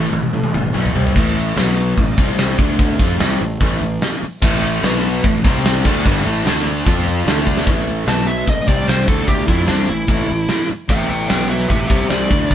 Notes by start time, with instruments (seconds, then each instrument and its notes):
Already playing: overdriven electric guitar A2 E3 A3
0.13 fingered electric bass A1, overdriven electric guitar A2 E3, high tom
0.23 mid tom
0.33 fingered electric bass A2, overdriven electric guitar A2 E3
0.44 mid tom
0.54 fingered electric bass G1, overdriven electric guitar A2 E3, mid tom
0.74 fingered electric bass B1, overdriven electric guitar A2 E3 A3, mid tom
0.85 floor tom
0.95 fingered electric bass C2, overdriven electric guitar C3 G3 C4, floor tom
1.07 floor tom
1.15 fingered electric bass A1, overdriven electric guitar A2 E3 A3, kick, crash
1.56 fingered electric bass B1, overdriven electric guitar B2 F#3 B3, snare, open hi-hat
1.97 fingered electric bass A1, overdriven electric guitar A2 E3, kick, open hi-hat
2.18 fingered electric bass C2, overdriven electric guitar C3 G3 C4, kick
2.38 snare, open hi-hat
2.58 fingered electric bass D2, overdriven electric guitar D3 A3 D4, kick
2.79 kick, open hi-hat
2.99 fingered electric bass F2, overdriven electric guitar F3 C4 F4, kick
3.20 fingered electric bass C2, overdriven electric guitar C3 G3 C4, snare, open hi-hat
3.41 fingered electric bass A1, overdriven electric guitar A2 E3
3.60 fingered electric bass A1, overdriven electric guitar A2 E3 A3, kick, open hi-hat
3.81 fingered electric bass A1, overdriven electric guitar A2 E3
4.01 snare, open hi-hat
4.22 muted overdriven electric guitar stroke, muted fingered electric bass stroke
4.42 fingered electric bass A1, overdriven electric guitar A2 E3 A3, kick, crash
4.83 fingered electric bass B1, overdriven electric guitar B2 F#3 B3, snare, open hi-hat
5.24 fingered electric bass A1, overdriven electric guitar A2 E3, kick, open hi-hat
5.44 fingered electric bass C2, overdriven electric guitar C3 G3 C4, kick
5.65 snare, open hi-hat
5.85 fingered electric bass D2, overdriven electric guitar D3 A3 D4, kick, crash
6.04 fingered electric bass G1, overdriven electric guitar G2 D3 G3, kick
6.24 fingered electric bass A1, overdriven electric guitar A2 E3 A3
6.45 fingered electric bass D2, overdriven electric guitar D3 A3 D4, snare, open hi-hat
6.85 fingered electric bass F2, overdriven electric guitar F3 C4 F4, kick, open hi-hat
7.25 fingered electric bass D2, overdriven electric guitar D3 A3 D4, snare, open hi-hat
7.47 kick
7.57 snare
7.66 fingered electric bass A1, overdriven electric guitar A2 E3 A3, kick, open hi-hat
7.87 open hi-hat
8.06 fingered electric bass B1, overdriven electric guitar B2 F#3 B3, lead electric guitar A5, snare, open hi-hat
8.27 lead electric guitar E5, open hi-hat
8.47 fingered electric bass A1, overdriven electric guitar A2 E3, lead electric guitar D#5, kick, open hi-hat
8.67 fingered electric bass C2, overdriven electric guitar C3 G3 C4, lead electric guitar D5, kick, open hi-hat
8.87 lead electric guitar C5, snare, open hi-hat
9.06 fingered electric bass D2, overdriven electric guitar D3 A3 D4, lead electric guitar A4, kick, open hi-hat
9.27 lead electric guitar G4, kick, open hi-hat
9.47 fingered electric bass F2, overdriven electric guitar F3 C4 F4, lead electric guitar E4, kick, open hi-hat
9.67 fingered electric bass C2, overdriven electric guitar C3 G3 C4, lead electric guitar D4, snare, open hi-hat
9.87 fingered electric bass A1, overdriven electric guitar A2 E3, lead electric guitar E4, open hi-hat
10.07 fingered electric bass A1, overdriven electric guitar A2 E3 A3, kick, open hi-hat
10.28 fingered electric bass A1, overdriven electric guitar A2 E3, open hi-hat
10.48 snare, open hi-hat
10.69 muted overdriven electric guitar stroke, muted fingered electric bass stroke, open hi-hat
10.88 fingered electric bass A1, overdriven electric guitar A2 E3 A3, lead electric guitar E5 G5, kick, open hi-hat
11.09 lead electric guitar E5 G5, open hi-hat
11.29 fingered electric bass B1, overdriven electric guitar B2 F#3 B3, lead electric guitar B4 G5, snare, open hi-hat
11.48 lead electric guitar B4 E5, open hi-hat
11.69 fingered electric bass A1, overdriven electric guitar A2 E3, lead electric guitar G4 E5, kick, open hi-hat
11.88 fingered electric bass C2, overdriven electric guitar C3 G3 C4, lead electric guitar G4 E5, kick, open hi-hat
12.09 lead electric guitar D5, snare, open hi-hat
12.30 fingered electric bass D2, overdriven electric guitar D3 A3 D4, kick, open hi-hat
12.51 kick, open hi-hat